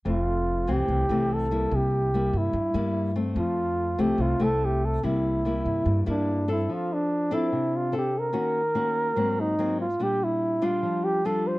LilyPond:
<<
  \new Staff \with { instrumentName = "Flugelhorn" } { \time 4/4 \key f \major \tempo 4 = 145 f'4. g'4. a'4 | g'4. e'2 r8 | f'4. g'8 f'8 a'8 g'8 a'8 | e'2~ e'8 d'4 e'8 |
f'8 d'4 e'4 f'8 g'8 bes'8~ | bes'2~ bes'8 ees'4 f'8 | g'8 e'4 f'4 g'8 a'8 c''8 | }
  \new Staff \with { instrumentName = "Nylon-string guitar" } { \time 4/4 \key f \major << { <a c'>4. <e a c'>4 <e a c'>4 <g bes e'>8~ | <g bes e'>4 <g bes e'>4 r8 <g bes e'>4 <a c'>8~ | <a c'>4. <a c' e'>4 <a c' e'>4. | <g bes e'>4 <g bes e'>4. <g bes e'>4 <c' d' a'>8~ |
<c' d' a'>4 r8 <c' d' a'>4. <c' d' a'>4 | <bes des' ges'>8 r8 <bes des' ges'>4 <ges bes c'>4 <ges bes c'>8 r8 | <g d'>4. <g d' f'>4. <g d' f'>4 | } \\ { f,2 c2 | c2 g,2 | f2 c2 | c2 g,2 |
f2 c2 | ees2 aes,2 | bes,2 f2 | } >> }
  \new Staff \with { instrumentName = "Upright bass" } { \clef bass \time 4/4 \key f \major f,,4. c,8 c,8 c,4. | c,4. g,8 g,8 g,4. | f,4. c,8 c,8 c,4. | c,4. g,8 g,8 g,4. |
r1 | r1 | r1 | }
>>